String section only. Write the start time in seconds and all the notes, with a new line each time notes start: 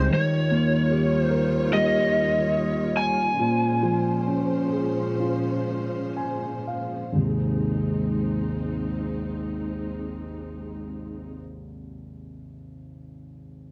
0.10 D#2 D#3 G3 F4 C#5
3.39 A#2 F3 G#3 C#4 C5
7.19 G#3 C4 D#4